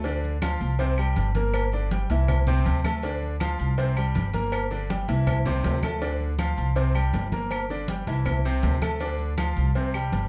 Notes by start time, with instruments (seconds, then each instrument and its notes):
Already playing: upright bass D2
0.04 grand piano D3 D4 D5, cowbell, high conga, low agogo, maracas
0.23 high conga, maracas
0.42 grand piano F3 F4 F5, cowbell, high conga, low agogo, claves, maracas
0.61 upright bass C2, high conga, low agogo, maracas
0.79 grand piano C3 C4 C5, cowbell, high conga, maracas
0.98 grand piano G3 G4 G5, high conga, low agogo, claves
1.16 upright bass G1, cowbell, high conga, low agogo, maracas
1.35 grand piano A#3 A#4 A#5, cowbell, high conga, maracas
1.54 cowbell, high conga, low agogo, claves, maracas
1.72 grand piano D3 D4 D5, high conga, low agogo
1.91 grand piano G3 G4 G5, cowbell, high conga, maracas
2.10 upright bass C2, grand piano E3 E4 E5, cowbell, high conga, low agogo, maracas
2.28 cowbell, high conga, low conga, low agogo, claves, maracas
2.47 grand piano C3 C4 C5, high conga, low conga
2.66 upright bass D2, cowbell, high conga, low agogo, maracas
2.84 grand piano A3 A4 A5, cowbell, high conga, low agogo, claves, maracas
3.03 grand piano D3 D4 D5, cowbell, high conga, low agogo, maracas
3.22 high conga
3.40 grand piano F3 F4 F5, cowbell, high conga, low agogo, claves, maracas
3.59 upright bass C2, high conga, low agogo, maracas
3.78 grand piano C3 C4 C5, cowbell, high conga, maracas
3.96 grand piano G3 G4 G5, high conga, low agogo, claves
4.15 upright bass G1, cowbell, high conga, low agogo, maracas
4.34 grand piano A#3 A#4 A#5, cowbell, high conga, maracas
4.52 cowbell, high conga, low agogo, claves, maracas
4.71 grand piano D3 D4 D5, high conga, low agogo
4.89 grand piano G3 G4 G5, cowbell, high conga, maracas
5.08 upright bass C2, grand piano E3 E4 E5, cowbell, high conga, low agogo, maracas
5.27 cowbell, high conga, low conga, low agogo, claves, maracas
5.46 grand piano C3 C4 C5, high conga, low conga, high timbale
5.64 upright bass D2, cowbell, high conga, low timbale, low agogo, maracas
5.83 grand piano A3 A4 A5, cowbell, high conga, low timbale, low agogo, claves, maracas
6.02 grand piano D3 D4 D5, cowbell, high conga, low agogo, maracas
6.20 high conga
6.39 grand piano F3 F4 F5, cowbell, high conga, low agogo, claves, maracas
6.57 upright bass C2, high conga, low agogo, maracas
6.76 grand piano C3 C4 C5, cowbell, high conga, maracas
6.95 grand piano G3 G4 G5, high conga, low agogo, claves
7.14 upright bass G1, cowbell, high conga, low timbale, low agogo, maracas
7.32 grand piano A#3 A#4 A#5, cowbell, high conga, maracas
7.51 cowbell, high conga, low agogo, claves, maracas
7.69 grand piano D3 D4 D5, high conga, low agogo
7.88 grand piano G3 G4 G5, cowbell, high conga, maracas
8.07 upright bass C2, grand piano E3 E4 E5, cowbell, high conga, low agogo, maracas
8.26 cowbell, high conga, low conga, low agogo, claves, maracas
8.45 grand piano C3 C4 C5, high conga
8.63 upright bass D2, cowbell, high conga, low timbale, low agogo, maracas
8.81 grand piano A3 A4 A5, cowbell, high conga, low agogo, claves, maracas
9.00 grand piano D3 D4 D5, cowbell, high conga, low agogo, maracas
9.19 high conga, maracas
9.38 grand piano F3 F4 F5, cowbell, high conga, low agogo, claves, maracas
9.57 upright bass C2, high conga, low agogo, maracas
9.75 grand piano C3 C4 C5, cowbell, high conga, maracas
9.94 grand piano G3 G4 G5, high conga, low agogo, claves, maracas
10.12 upright bass G1, cowbell, high conga, low agogo, maracas